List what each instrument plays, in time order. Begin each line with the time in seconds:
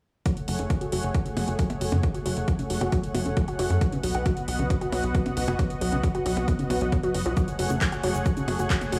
0.26 synth arpeggio sound F#3, analog synth pad A3 G#4 C#5 F#5, kick, closed hi-hat
0.37 closed hi-hat
0.48 analog synth bass F#1, synth arpeggio sound F#3, analog synth pad A3 G#4 C#5 F#5, open hi-hat
0.59 analog synth bass F#1, synth arpeggio sound C#3, closed hi-hat
0.70 synth arpeggio sound F#3, analog synth pad A3 G#4 C#5 F#5, kick, closed hi-hat
0.81 synth arpeggio sound F#4, closed hi-hat
0.92 analog synth bass F#1, synth arpeggio sound F#3, analog synth pad A3 G#4 C#5 F#5, open hi-hat
1.03 analog synth bass F#1, closed hi-hat
1.14 synth arpeggio sound F#3, analog synth pad A3 G#4 C#5 F#5, kick, closed hi-hat
1.26 synth arpeggio sound C#3, analog synth pad A3 G#4 C#5 F#5, closed hi-hat
1.37 analog synth bass F#1, synth arpeggio sound F#3, open hi-hat, percussion blips
1.48 analog synth bass F#1, analog synth pad A3 G#4 C#5 F#5, synth arpeggio sound F#4, closed hi-hat
1.59 synth arpeggio sound F#3, kick, closed hi-hat
1.70 analog synth pad A3 G#4 C#5 F#5, closed hi-hat, percussion blips
1.81 analog synth bass F#1, synth arpeggio sound F#3, open hi-hat
1.92 analog synth bass F#2, synth arpeggio sound C#3, analog synth pad A3 G#4 C#5 F#5, closed hi-hat, percussion blips
2.03 synth arpeggio sound F#3, analog synth pad A3 G#4 C#5 F#5, kick, closed hi-hat
2.15 synth arpeggio sound F#4, closed hi-hat
2.25 analog synth bass F#1, synth arpeggio sound F#3, analog synth pad A3 G#4 C#5 F#5, open hi-hat
2.37 analog synth bass F#1, closed hi-hat
2.48 synth arpeggio sound F#3, analog synth pad A3 G#4 C#5 F#5, kick, closed hi-hat
2.59 synth arpeggio sound C#3, closed hi-hat
2.70 analog synth bass F#1, synth arpeggio sound F#3, analog synth pad A3 G#4 C#5 F#5, open hi-hat
2.81 analog synth bass F#1, synth arpeggio sound F#4, closed hi-hat, percussion blips
2.92 synth arpeggio sound F#3, analog synth pad A3 G#4 C#5 F#5, kick, closed hi-hat
3.03 analog synth pad A3 G#4 C#5 F#5, closed hi-hat
3.15 analog synth bass F#1, synth arpeggio sound F#3, open hi-hat, percussion blips
3.25 analog synth bass F#1, synth arpeggio sound C#3, analog synth pad A3 G#4 C#5 F#5, closed hi-hat
3.37 synth arpeggio sound F#3, kick, closed hi-hat
3.48 analog synth pad A3 G#4 C#5 F#5, synth arpeggio sound F#4, closed hi-hat
3.59 analog synth bass F#1, synth arpeggio sound F#3, open hi-hat
3.70 analog synth bass F#2, analog synth pad A3 G#4 C#5 F#5, closed hi-hat
3.81 synth arpeggio sound F#3, analog synth pad B3 F#4 D#5 F#5, kick, closed hi-hat
3.92 synth arpeggio sound C#3, closed hi-hat
4.03 analog synth bass B1, synth arpeggio sound F#3, analog synth pad B3 F#4 D#5 F#5, open hi-hat
4.15 analog synth bass B1, synth arpeggio sound F#4, closed hi-hat
4.26 synth arpeggio sound F#3, analog synth pad B3 F#4 D#5 F#5, kick, closed hi-hat
4.37 closed hi-hat
4.48 analog synth bass B1, synth arpeggio sound F#3, analog synth pad B3 F#4 D#5 F#5, open hi-hat
4.59 analog synth bass B1, synth arpeggio sound C#3, closed hi-hat
4.70 synth arpeggio sound F#3, analog synth pad B3 F#4 D#5 F#5, kick, closed hi-hat
4.81 analog synth pad B3 F#4 D#5 F#5, synth arpeggio sound F#4, closed hi-hat
4.92 analog synth bass B1, synth arpeggio sound F#3, open hi-hat, percussion blips
5.03 analog synth bass B1, analog synth pad B3 F#4 D#5 F#5, closed hi-hat
5.15 synth arpeggio sound F#3, kick, closed hi-hat
5.26 synth arpeggio sound C#3, analog synth pad B3 F#4 D#5 F#5, closed hi-hat, percussion blips
5.37 analog synth bass B1, synth arpeggio sound F#3, open hi-hat
5.48 analog synth bass F#1, analog synth pad B3 F#4 D#5 F#5, synth arpeggio sound F#4, closed hi-hat, percussion blips
5.59 synth arpeggio sound F#3, analog synth pad B3 F#4 D#5 F#5, kick, closed hi-hat
5.70 closed hi-hat
5.81 analog synth bass B1, synth arpeggio sound F#3, analog synth pad B3 F#4 D#5 F#5, open hi-hat
5.92 analog synth bass B1, synth arpeggio sound C#3, closed hi-hat
6.03 synth arpeggio sound F#3, analog synth pad B3 F#4 D#5 F#5, kick, closed hi-hat
6.15 synth arpeggio sound F#4, closed hi-hat
6.25 analog synth bass B1, synth arpeggio sound F#3, analog synth pad B3 F#4 D#5 F#5, open hi-hat
6.37 analog synth bass B1, closed hi-hat, percussion blips
6.48 synth arpeggio sound F#3, analog synth pad B3 F#4 D#5 F#5, kick, closed hi-hat
6.59 synth arpeggio sound C#3, analog synth pad B3 F#4 D#5 F#5, closed hi-hat
6.70 analog synth bass B1, synth arpeggio sound F#3, open hi-hat, percussion blips
6.81 analog synth bass B1, synth arpeggio sound F#3, analog synth pad B3 F#4 D#5 F#5, closed hi-hat
6.92 synth arpeggio sound F#3, kick, closed hi-hat
7.03 synth arpeggio sound F#3, analog synth pad B3 F#4 D#5 F#5, closed hi-hat
7.14 analog synth bass F#1, synth arpeggio sound F#3, open hi-hat
7.26 analog synth bass B1, synth arpeggio sound F3, analog synth pad B3 F#4 D#5 F#5, closed hi-hat
7.37 synth arpeggio sound F#3, analog synth pad A3 G#4 C#5 F#5, kick, closed hi-hat, shaker
7.48 closed hi-hat, shaker
7.59 analog synth bass F#1, synth arpeggio sound F#3, analog synth pad A3 G#4 C#5 F#5, open hi-hat
7.70 analog synth bass F#1, synth arpeggio sound C#3, closed hi-hat, shaker
7.81 synth arpeggio sound F#3, analog synth pad A3 G#4 C#5 F#5, kick, clap, closed hi-hat, shaker
7.92 synth arpeggio sound F#4, closed hi-hat, shaker
8.03 analog synth bass F#1, synth arpeggio sound F#3, analog synth pad A3 G#4 C#5 F#5, open hi-hat
8.15 analog synth bass F#1, closed hi-hat, shaker
8.26 synth arpeggio sound F#3, analog synth pad A3 G#4 C#5 F#5, kick, closed hi-hat, shaker
8.37 synth arpeggio sound C#3, analog synth pad A3 G#4 C#5 F#5, closed hi-hat, shaker
8.48 analog synth bass F#1, synth arpeggio sound F#3, open hi-hat, percussion blips
8.59 analog synth bass F#1, analog synth pad A3 G#4 C#5 F#5, synth arpeggio sound F#4, closed hi-hat, shaker
8.70 synth arpeggio sound F#3, kick, clap, closed hi-hat, shaker
8.81 analog synth pad A3 G#4 C#5 F#5, closed hi-hat, percussion blips, shaker
8.92 analog synth bass F#1, synth arpeggio sound F#3, open hi-hat